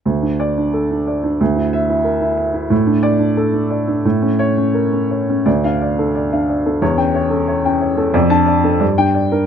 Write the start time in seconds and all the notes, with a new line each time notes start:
0.05 D2
0.22 D4
0.40 D5
0.57 D4
0.73 A4
0.91 D4
1.07 D5
1.24 D4
1.41 D2
1.56 E4
1.73 E5
1.89 E4
2.04 A#4
2.21 E4
2.37 E5
2.54 E4
2.70 A2
2.87 D4
3.03 D5
3.19 D4
3.37 A4
3.53 D4
3.70 D5
3.88 D4
4.05 A2
4.22 C#4
4.39 C#5
4.58 C#4
4.74 A#4
4.92 C#4
5.11 C#5
5.29 C#4
5.46 D2 D5
5.64 D4 F5
5.82 D5
5.99 D4 A4
6.15 D5
6.33 D4 F5
6.49 D5
6.66 D4 A4
6.82 E2 C#5
6.98 C#4 G5
7.15 C#5
7.30 C#4 A4
7.48 C#5
7.65 C#4 G5
7.81 C#5
7.97 C#4 A4
8.14 F2 D5
8.30 D4 A5
8.46 D5
8.64 D4 A4
8.80 G2 D5
8.98 D4 G5
9.14 D5
9.32 D4 A#4